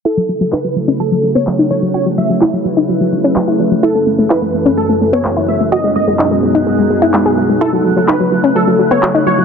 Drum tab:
CP |--x---x-|--x---x-|--x---x-|--x---x-|

CP |--x---x-|